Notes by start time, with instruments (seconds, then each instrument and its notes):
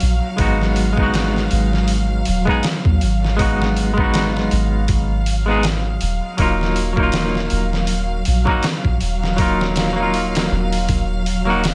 Already playing: string section F#3 F5
0.00 808-style bass A#1, open hi-hat
0.37 808-style bass G#1, clean electric guitar G#3 B3 D#4, kick, open hi-hat
0.41 clean electric guitar F#4
0.62 snare
0.76 open hi-hat
0.93 clean electric guitar G#3 B3
0.97 clean electric guitar D#4, kick
1.03 clean electric guitar F#4
1.14 snare, open hi-hat
1.36 snare
1.51 808-style bass G#1, open hi-hat
1.73 snare
1.88 open hi-hat
2.25 808-style bass D#1, open hi-hat
2.45 clean electric guitar G#3 B3 D#4, kick
2.51 clean electric guitar G#4
2.63 snare, open hi-hat
2.85 808-style bass D#2, kick
3.01 808-style bass G#1, open hi-hat
3.24 snare
3.37 clean electric guitar G#3 B3 D#4, kick, open hi-hat
3.42 clean electric guitar F#4
3.62 snare
3.77 open hi-hat
3.94 clean electric guitar G#3 B3
3.98 clean electric guitar D#4, kick
4.04 clean electric guitar F#4
4.14 snare, open hi-hat
4.37 snare
4.51 808-style bass G#1, open hi-hat
4.88 808-style bass G#1, kick, open hi-hat
5.26 open hi-hat
5.46 clean electric guitar G#3 B3 D#4
5.51 clean electric guitar G#4
5.63 snare, open hi-hat
6.01 808-style bass D#1, open hi-hat
6.37 808-style bass D#1, clean electric guitar F#3 A#3 D#4, string section F#3 F5, kick, open hi-hat
6.42 clean electric guitar F4
6.61 snare
6.76 open hi-hat
6.93 clean electric guitar F#3 A#3
6.97 clean electric guitar D#4, kick
7.03 clean electric guitar F4
7.12 snare, open hi-hat
7.35 snare
7.50 808-style bass D#1, open hi-hat
7.73 snare
7.87 open hi-hat
8.25 808-style bass A#1, open hi-hat
8.46 clean electric guitar F#3 A#3 D#4, kick
8.51 clean electric guitar F#4
8.63 snare, open hi-hat
8.85 808-style bass A#1, kick
9.01 808-style bass D#1, open hi-hat
9.24 snare
9.36 clean electric guitar F#3 A#3 D#4, kick, open hi-hat
9.42 clean electric guitar F4
9.61 snare
9.76 snare, open hi-hat
9.93 clean electric guitar F#3 A#3
10.00 clean electric guitar D#4 F4
10.14 open hi-hat
10.35 snare, open hi-hat
10.52 808-style bass D#1
10.73 open hi-hat
10.89 808-style bass D#1, kick, open hi-hat
11.26 open hi-hat
11.45 clean electric guitar F#3 A#3 D#4
11.50 clean electric guitar F#4
11.64 snare, open hi-hat